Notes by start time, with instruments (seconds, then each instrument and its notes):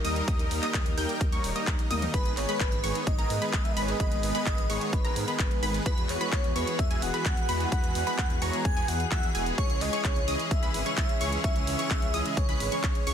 Already playing: string section D#3 D#4 G4 A#4
0.04 detuned saw bass D#2, supersaw synth G3 A#3 D#4 A#4 D#5, synth pluck D#6, open hi-hat
0.16 closed hi-hat
0.28 detuned saw bass D#2, supersaw synth G3 A#3 D#4 A#4 D#5, synth pluck D#6, kick, closed hi-hat
0.39 detuned saw bass D#2, closed hi-hat
0.51 detuned saw bass D#2, open hi-hat
0.63 supersaw synth G3 A#3 D#4 A#4 D#5, synth pluck D#6, clap, closed hi-hat
0.74 detuned saw bass D#2, kick, clap, closed hi-hat
0.86 detuned saw bass D#2, closed hi-hat
0.97 detuned saw bass D#2, supersaw synth G3 A#3 D#4 A#4 G5, synth pluck G6, open hi-hat
1.09 closed hi-hat
1.21 detuned saw bass D#2, kick, closed hi-hat
1.32 supersaw synth G3 A#3 D#4 A#4 C#5, synth pluck C#6, closed hi-hat
1.44 detuned saw bass D#1, open hi-hat
1.56 supersaw synth G3 A#3 D#4 A#4 D#5, synth pluck D#6, closed hi-hat
1.67 detuned saw bass D#2, kick, clap, closed hi-hat
1.79 closed hi-hat
1.90 detuned saw bass D#2, supersaw synth G3 A#3 D#4 A#4 D#5, synth pluck D#6, open hi-hat, high tom
2.02 closed hi-hat, mid tom
2.14 detuned saw bass G#1, supersaw synth D#3 G#3 B3 G#4, string section G#3 B3, digital synth lead B4, synth pluck B5, kick, closed hi-hat
2.25 detuned saw bass G#1, closed hi-hat
2.37 detuned saw bass G#1, digital synth lead C#5, clap, open hi-hat
2.49 supersaw synth D#3 G#3 B3 G#4 B4, synth pluck B5, closed hi-hat
2.60 detuned saw bass G#1, digital synth lead B4, kick, clap, closed hi-hat
2.72 detuned saw bass G#1, closed hi-hat
2.84 detuned saw bass G#1, supersaw synth D#3 G#3 B3 G#4 C#5, synth pluck C#6, open hi-hat
2.95 closed hi-hat
3.07 detuned saw bass G#1, digital synth lead D#5, kick, closed hi-hat
3.18 supersaw synth D#3 G#3 B3 G#4 A#4, synth pluck A#5, closed hi-hat
3.30 detuned saw bass G#2, open hi-hat
3.42 supersaw synth D#3 G#3 B3 G#4 B4, synth pluck B5, closed hi-hat
3.53 detuned saw bass G#1, kick, clap, closed hi-hat
3.63 digital synth lead E5, closed hi-hat
3.73 digital synth lead D#5
3.77 detuned saw bass G#1, supersaw synth D#3 G#3 B3 G#4 B4, synth pluck B5, open hi-hat
3.82 digital synth lead C#5
3.88 digital synth lead D#5, closed hi-hat
4.00 detuned saw bass G#1, supersaw synth G#3 B3 B4, digital synth lead D#5, synth pluck B5, kick, closed hi-hat
4.12 detuned saw bass G#1, closed hi-hat
4.23 detuned saw bass G#1, open hi-hat
4.35 supersaw synth D#3 G#3 B3 G#4 B4, synth pluck B5, closed hi-hat
4.46 detuned saw bass G#1, kick, clap, closed hi-hat
4.58 detuned saw bass G#1, closed hi-hat
4.70 detuned saw bass G#1, supersaw synth D#3 G#3 B3 G#4 C#5, synth pluck C#6, open hi-hat
4.81 closed hi-hat
4.86 digital synth lead C#5
4.93 detuned saw bass G#1, digital synth lead B4, kick, closed hi-hat
5.05 supersaw synth D#3 G#3 B3 G#4 A#4, synth pluck A#5, closed hi-hat
5.16 detuned saw bass G#2, open hi-hat
5.28 supersaw synth D#3 G#3 B3 G#4 B4, synth pluck B5, closed hi-hat
5.39 detuned saw bass G#1, kick, clap, closed hi-hat
5.51 closed hi-hat
5.63 detuned saw bass G#1, supersaw synth D#3 G#3 B3 G#4 B4, synth pluck B5, open hi-hat
5.74 closed hi-hat
5.86 detuned saw bass E2, string section E3 B3 F#4 G#4, supersaw synth E3 G#3 B3 F#4 B4, digital synth lead B4, synth pluck B5, kick, closed hi-hat
5.98 detuned saw bass E2, closed hi-hat
6.09 detuned saw bass E2, digital synth lead C#5, clap, open hi-hat
6.21 supersaw synth E3 G#3 B3 F#4 B4, synth pluck B5, closed hi-hat
6.32 detuned saw bass E2, kick, clap, closed hi-hat
6.44 detuned saw bass E2, closed hi-hat
6.56 detuned saw bass E2, supersaw synth E3 G#3 B3 F#4 C#5, digital synth lead B4, synth pluck C#6, open hi-hat
6.67 closed hi-hat
6.79 detuned saw bass E2, digital synth lead E5, kick, closed hi-hat
6.91 supersaw synth E3 G#3 B3 F#4 G#4, synth pluck G#5, closed hi-hat
7.02 detuned saw bass E1, digital synth lead F#5, open hi-hat
7.14 supersaw synth E3 G#3 B3 F#4 B4, synth pluck B5, closed hi-hat
7.25 detuned saw bass E2, kick, clap, closed hi-hat
7.37 closed hi-hat
7.49 detuned saw bass E2, supersaw synth E3 G#3 B3 F#4 B4, synth pluck B5, open hi-hat
7.60 closed hi-hat
7.72 detuned saw bass E2, supersaw synth F#4 B4, digital synth lead F#5, synth pluck B5, kick, closed hi-hat
7.84 detuned saw bass E2, closed hi-hat
7.95 detuned saw bass E2, open hi-hat
8.07 supersaw synth E3 G#3 B3 F#4 B4, synth pluck B5, closed hi-hat
8.18 detuned saw bass E2, kick, clap, closed hi-hat
8.30 detuned saw bass E2, closed hi-hat
8.42 detuned saw bass E2, supersaw synth E3 G#3 B3 F#4 C#5, digital synth lead A#5, synth pluck C#6, open hi-hat
8.53 closed hi-hat
8.65 detuned saw bass E2, digital synth lead G#5, kick, closed hi-hat
8.77 supersaw synth E3 G#3 B3 F#4 G#4, synth pluck G#5, closed hi-hat
8.88 detuned saw bass E2, digital synth lead F#5, open hi-hat
9.00 closed hi-hat
9.11 detuned saw bass E2, supersaw synth E3 G#3 B3 F#4 E5, digital synth lead F#5, synth pluck E6, kick, clap, closed hi-hat
9.23 closed hi-hat
9.35 detuned saw bass E1, supersaw synth E3 G#3 B3 F#4 G#4, synth pluck G#5, open hi-hat
9.46 closed hi-hat
9.58 detuned saw bass C#2, string section C#3 C#4 E4, supersaw synth E3 G#3 C#4 G#4 C#5, digital synth lead C#5, synth pluck C#6, kick, closed hi-hat
9.70 detuned saw bass C#2, closed hi-hat
9.81 detuned saw bass C#2, digital synth lead D#5, clap, open hi-hat
9.93 supersaw synth E3 G#3 C#4 G#4 C#5, synth pluck C#6, closed hi-hat
10.05 detuned saw bass C#2, digital synth lead C#5, kick, clap, closed hi-hat
10.16 detuned saw bass C#2, closed hi-hat
10.28 detuned saw bass C#2, supersaw synth E3 G#3 C#4 G#4 D#5, synth pluck D#6, open hi-hat
10.39 closed hi-hat
10.51 detuned saw bass C#2, digital synth lead E5, kick, closed hi-hat
10.63 supersaw synth E3 G#3 C#4 G#4 B4, synth pluck B5, closed hi-hat
10.74 detuned saw bass G#1, open hi-hat
10.86 supersaw synth E3 G#3 C#4 G#4 C#5, synth pluck C#6, closed hi-hat
10.98 detuned saw bass C#2, kick, clap, closed hi-hat
11.09 closed hi-hat
11.21 detuned saw bass C#2, supersaw synth E3 G#3 C#4 G#4 C#5, synth pluck C#6, open hi-hat
11.32 closed hi-hat
11.44 detuned saw bass C#2, supersaw synth E3 G#3 C#4 G#4 C#5, digital synth lead E5, synth pluck C#6, kick, closed hi-hat
11.56 detuned saw bass C#2, closed hi-hat
11.67 detuned saw bass C#2, open hi-hat
11.79 supersaw synth E3 G#3 C#4 G#4 C#5, synth pluck C#6, closed hi-hat
11.91 detuned saw bass C#2, kick, clap, closed hi-hat
12.02 detuned saw bass C#2, closed hi-hat
12.14 detuned saw bass C#2, supersaw synth E3 G#3 C#4 G#4 D#5, synth pluck D#6, open hi-hat
12.25 closed hi-hat
12.37 detuned saw bass C#2, digital synth lead C#5, kick, closed hi-hat
12.49 supersaw synth E3 G#3 C#4 G#4 B4, synth pluck B5, closed hi-hat
12.60 detuned saw bass G#1, open hi-hat
12.72 supersaw synth E3 G#3 C#4 G#4 C#5, synth pluck C#6, closed hi-hat
12.84 detuned saw bass C#2, kick, clap, closed hi-hat
12.95 closed hi-hat
13.07 detuned saw bass C#2, supersaw synth E3 G#3 C#4 G#4 C#5, synth pluck C#6, open hi-hat